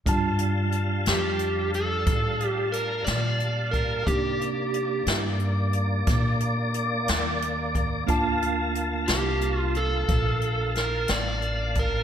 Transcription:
0.06 G2 G3 D4 F4 F5 A5, kick, closed hi-hat
0.39 closed hi-hat
0.72 closed hi-hat
1.06 F2 G4, snare, closed hi-hat
1.39 closed hi-hat
1.74 A4, closed hi-hat
2.06 A2, kick, closed hi-hat
2.40 closed hi-hat
2.47 G4
2.72 A#4, closed hi-hat
3.04 A#2 D5, snare, closed hi-hat
3.40 closed hi-hat
3.71 A#4, kick, closed hi-hat
4.06 C3 A#3 D4 D#4 G4 D5, kick, closed hi-hat
4.10 G4
4.41 closed hi-hat
4.74 closed hi-hat
5.07 G2, snare, closed hi-hat
5.39 closed hi-hat
5.73 closed hi-hat
6.07 A#2, kick, snare, closed hi-hat
6.40 closed hi-hat
6.74 closed hi-hat
7.08 D#2, snare, closed hi-hat
7.42 closed hi-hat
7.75 kick, closed hi-hat
8.07 D2 A#3 D4 F4 F5 A5, kick, closed hi-hat
8.42 closed hi-hat
8.75 closed hi-hat
9.08 C2 G4, snare, closed hi-hat
9.41 closed hi-hat
9.60 F4
9.75 A4, closed hi-hat
10.08 A#1, kick, closed hi-hat
10.41 closed hi-hat
10.75 A#4, snare, closed hi-hat
11.08 A1 D5, snare, closed hi-hat
11.42 closed hi-hat
11.75 kick, closed hi-hat
11.79 A#4

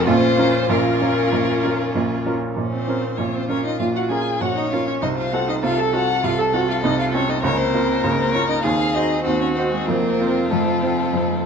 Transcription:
0.06 A#1 A#2 C#4 F4 C5
0.38 C#4 F4 A#4
0.69 A#1 A#2 C#4 F4 A#4
1.01 C#4 F4 A#4
1.33 A#1 A#2
1.64 C#4 F4 A#4
1.95 A#1 A#2
2.26 C#4 F4 A#4
2.56 A#1 A#2 C#4
2.72 C4 C5
2.88 C#4 F4 A#4
3.17 A#1 A#2 C#4 F4 C#5
3.33 C4 C5
3.49 C#4 F4 A#4 C#5
3.64 D#4 D#5
3.79 A#1 A#2 F4 F5
3.94 F#4 F#5
4.09 C#4 F4 G#4 A#4 G#5
4.40 A#1 A#2 F#4 C#5 F#5
4.55 D#4 D#5
4.71 C#4 F4 A#4 F5
4.86 C#4 C#5
5.01 C2 C3 D#4 C5 D#5
5.17 F4 F5
5.32 C4 F4 F#4 A4 F#5
5.47 D#4 D#5
5.62 C2 C3 F4 A4 F5
5.77 A4 A5
5.93 C4 F4 F#4 A4 F#5
6.23 C2 C3 F4 A4 F5
6.38 A4 A5
6.53 C4 F4 F#4 A4 F#5
6.68 F4 F5
6.83 C2 C3 D#4 D#5
6.98 F4 F5
7.13 C4 C#4 F4 A4 C#5
7.28 D#4 D#5
7.43 C#2 C#3 A#3 C#4 A#4 C#5
7.57 C4 C5
7.74 A#3 F4 A#4
8.03 C#2 C#3 C#4 C#5
8.18 C4 C5
8.33 A#3 C#4 F4 A#4 C#5
8.48 D#4 D#5
8.63 D#2 D#3 C4 F4 G#4 F5
8.94 D#4 F#4 C5 D#5
9.24 D#2 D#3 C4 F#4 C5
9.40 C#4 C#5
9.55 C4 D#4 F#4 C5
9.71 G#3 G#4
9.86 F1 F2 A#3 F4 A#4
10.21 C4 F4 C5
10.50 F1 F2 A3 A4
10.82 C4 F4 C5
11.14 F1 F2

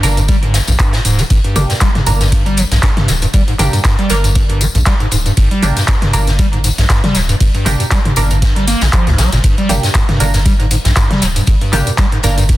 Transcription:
0.03 G1 G3 A#3 D4 A#4, snare, closed hi-hat, open hi-hat, tambourine
0.17 G2, closed hi-hat, tambourine
0.28 G3, kick, closed hi-hat, tambourine
0.43 G#2, closed hi-hat
0.54 G2, snare, closed hi-hat, open hi-hat, tambourine
0.67 A#1 G2, closed hi-hat, tambourine
0.79 G2, kick, clap, closed hi-hat, tambourine
0.93 A#2, snare, closed hi-hat
1.05 D1 G#2, open hi-hat, tambourine
1.18 G3, closed hi-hat, tambourine
1.30 G1 G2, kick, closed hi-hat, tambourine
1.44 G2, closed hi-hat
1.56 G1 G3 A#3 D4 G4, closed hi-hat, open hi-hat, mid tom, tambourine
1.70 G2, snare, closed hi-hat, tambourine
1.80 G3, kick, snare, clap, closed hi-hat, tambourine
1.95 G#2, snare, closed hi-hat, mid tom
2.06 G1 G#2 A#3 D4 A#4, closed hi-hat, open hi-hat, tambourine
2.21 G2, snare, closed hi-hat, tambourine
2.32 G2, kick, closed hi-hat, tambourine
2.46 G3, closed hi-hat
2.57 F3, closed hi-hat, open hi-hat, tambourine
2.71 A#1 G2, snare, closed hi-hat, tambourine
2.83 G2, kick, snare, clap, closed hi-hat
2.96 G2, snare, closed hi-hat, mid tom
3.08 D1 G3, snare, closed hi-hat, open hi-hat, tambourine
3.22 G2, closed hi-hat, tambourine
3.33 G1 G3, kick, closed hi-hat, tambourine
3.48 G#2, closed hi-hat
3.59 G1 G#2 A#3 D4 G4, clap, closed hi-hat, open hi-hat, mid tom, tambourine
3.73 G2, closed hi-hat, tambourine
3.84 G2, kick, snare, clap, closed hi-hat
3.99 G3, closed hi-hat
4.10 G1 F3 A#3 D4 A#4, snare, closed hi-hat, open hi-hat, tambourine
4.24 G2, closed hi-hat, tambourine
4.35 G2, kick, closed hi-hat, tambourine
4.50 G2, closed hi-hat
4.61 G3, open hi-hat, tambourine
4.75 A#1 G2, closed hi-hat, tambourine
4.86 G3, kick, snare, clap, closed hi-hat, tambourine
5.00 G#2, closed hi-hat
5.11 D1 G#2, closed hi-hat, open hi-hat, tambourine
5.26 G2, closed hi-hat, tambourine
5.37 G1 G2, kick, closed hi-hat, tambourine
5.51 G3, closed hi-hat
5.62 G1 F3 A#3 D4 G4, closed hi-hat, open hi-hat, mid tom, tambourine
5.77 G2, snare, closed hi-hat, tambourine
5.88 G2, kick, snare, clap, closed hi-hat, tambourine
6.02 G2, snare, closed hi-hat, mid tom
6.13 G1 G3 A#3 D4 A#4, closed hi-hat, open hi-hat, tambourine
6.27 G2, snare, closed hi-hat, tambourine
6.39 G3, kick, closed hi-hat, tambourine
6.53 G#2, closed hi-hat
6.64 G#2, closed hi-hat, open hi-hat, tambourine
6.78 A#1 G2, snare, closed hi-hat, tambourine
6.90 G2, kick, snare, clap, closed hi-hat, tambourine
7.03 G3, snare, closed hi-hat, mid tom
7.15 D1 F3, snare, closed hi-hat, open hi-hat, tambourine
7.29 G2, closed hi-hat, tambourine
7.40 G1 G2, kick, closed hi-hat, tambourine
7.55 G2, closed hi-hat
7.66 G1 G3 A#3 D4 G4, clap, closed hi-hat, open hi-hat, mid tom, tambourine
7.80 G2, closed hi-hat, tambourine
7.91 G3, kick, snare, clap, closed hi-hat, tambourine
8.05 G#2, closed hi-hat, mid tom
8.16 G1 G#2 A#3 D4 A#4, snare, closed hi-hat, open hi-hat, tambourine
8.31 G2, closed hi-hat, tambourine
8.42 G2, kick, snare, closed hi-hat, tambourine
8.56 G3, closed hi-hat
8.67 A#3, snare, closed hi-hat, open hi-hat, tambourine
8.81 A#1 A#2, snare, closed hi-hat, tambourine
8.93 F3, kick, clap, closed hi-hat, tambourine
9.07 D2 G2, snare, closed hi-hat
9.18 A#1 G3, snare, closed hi-hat, open hi-hat, tambourine
9.32 G1 A#2, snare, closed hi-hat, tambourine
9.44 G1 G2, kick, closed hi-hat, tambourine
9.58 G3, closed hi-hat
9.69 G1 F3 A#3 D4 G4, closed hi-hat, open hi-hat, mid tom, tambourine
9.83 G2, snare, closed hi-hat, tambourine
9.94 G2, kick, snare, clap, closed hi-hat, tambourine
10.09 G2, snare, closed hi-hat, mid tom
10.20 G1 G3 A#3 D4 A#4, closed hi-hat, open hi-hat, tambourine
10.34 G2, snare, closed hi-hat, tambourine
10.45 G3, kick, closed hi-hat, tambourine
10.60 G#2, closed hi-hat
10.71 G#2, closed hi-hat, open hi-hat, tambourine
10.85 A#1 G2, snare, closed hi-hat, tambourine
10.96 G2, kick, snare, clap, closed hi-hat, tambourine
11.11 G3, snare, closed hi-hat, mid tom
11.21 D1 F3, snare, closed hi-hat, open hi-hat, tambourine
11.36 G2, closed hi-hat, tambourine
11.47 G1 G2, kick, closed hi-hat, tambourine
11.61 G2, closed hi-hat
11.73 G1 G3 A#3 D4 G4, clap, closed hi-hat, open hi-hat, mid tom, tambourine
11.87 G2, closed hi-hat, tambourine
11.97 G3, kick, snare, clap, closed hi-hat, tambourine
12.12 G#2, closed hi-hat
12.23 G1 G#2 A#3 D4 A#4, snare, closed hi-hat, open hi-hat, tambourine
12.38 G2, closed hi-hat, tambourine
12.49 G2, kick, closed hi-hat, tambourine

